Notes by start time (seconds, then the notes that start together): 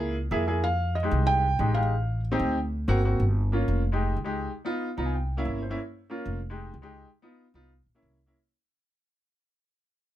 Already playing: C#2 A#3 E4 G#4
0.31 F2 A#3 E4 G#4 E5
0.47 A#3 E4 G#4 G#5
0.64 F5
0.95 D#5
1.03 G#3 D#4 G4
1.11 C2
1.27 G5
1.59 A1 G#3 D#4 G4
1.74 G#3 D#4 G4 F5
2.32 C4 D#4 G4
2.39 D2
2.88 G1 A#3 C4 F#4
3.04 A#3 C4 F#4
3.20 G1
3.52 A#3 C#4 F4
3.68 F1
3.92 G#3 D#4 G4
4.17 C#2
4.24 G#3 D#4 G4
4.65 B3 D#4 F4
4.97 C2 B3 D#4 F4 A#5
5.06 G#5
5.14 G5
5.37 A#3 C#4 E4 F5
5.45 G1 E5
5.62 C5
5.70 A#3 C#4 E4
6.10 A#3 C#4 F4
6.26 F1
6.50 G#3 D#4 G4
6.74 C#2
6.82 G#3 D#4 G4
7.22 B3 D#4 F4
7.54 C2 B3 D#4 F4
7.86 A#1
7.95 A#3 C#4 E4
8.02 C2
8.26 A#3 C#4 E4